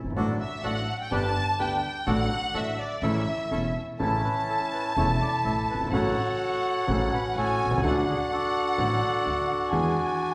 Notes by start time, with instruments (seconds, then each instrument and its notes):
0.04 upright bass G1, grand piano G1
0.10 upright bass G#1, grand piano G#1
0.16 upright bass A1, grand piano A1 A2 F#3 A3 D4 A4, bandoneon D4 F#4 A4
0.40 violin section E5
0.64 upright bass A1, grand piano A1 A2 F#3 A3 D4 A4, bandoneon D4 F#4 A4, violin section F#5
1.01 violin section G5
1.11 grand piano G1 G2 D3 G3 B3 G4, upright bass G1, bandoneon D4 G4 B4, violin section A5
1.58 upright bass D2, grand piano D2 D3 G3 B3 G4, bandoneon D4 G4 B4, violin section G5
2.06 upright bass A1, grand piano A1 A2 D3 F#3 A3 F#4, bandoneon D4 F#4 A4, violin section F#5
2.54 upright bass A1, grand piano A1 A2 D3 F#3 A3 F#4, bandoneon D4 F#4 A4, violin section E5
2.79 violin section D5
3.02 upright bass A1, grand piano A1 A2 C#3 E3 A3 E4, bandoneon C#4 E4 A4, violin section E5
3.51 grand piano E1 E2 C#3 E3 A3 E4, upright bass E1, bandoneon C#4 E4 A4
3.99 grand piano A1 A2 C#3 E3 A3 E4, upright bass A1, bandoneon C#4 E4 A4, violin section A5
4.24 bandoneon B4
4.49 bandoneon A4
4.73 bandoneon B4
4.97 upright bass E1, grand piano E1 E2 C#3 E3 A3 E4, bandoneon E4 A4 C#5
5.22 bandoneon D5
5.44 grand piano A1 A2, upright bass A1, bandoneon E5
5.70 bandoneon B4
5.75 grand piano F#1, upright bass F#1
5.81 upright bass G1, grand piano G1
5.87 upright bass G#1, grand piano G#1
5.92 upright bass A1, grand piano A1 A2 C#3 F#3 A3 F#4, bandoneon F#4 A4 C#5, violin section F#5
6.87 grand piano A1 A2 C#3 F#3 A3 F#4, upright bass A1, bandoneon C#4 F#4 A4
7.14 bandoneon B4
7.36 upright bass A1, grand piano A1 A2, bandoneon F#4 A4 C#5, violin section G#5
7.65 grand piano B1, upright bass B1
7.71 grand piano C2, upright bass C2
7.78 grand piano C#2, upright bass C#2
7.83 grand piano D2 D3 F#3 A3 F#4, upright bass D2, bandoneon A4, violin section F#5
7.87 bandoneon D4 F#4
8.09 bandoneon G#4
8.33 bandoneon D4 F#4 A4
8.78 grand piano A1 A2 D3 F#3 A3 F#4, upright bass A1
9.25 grand piano D2 D3, upright bass D2
9.72 upright bass E2, grand piano E2 E3 G#3 B3 G#4, violin section G#5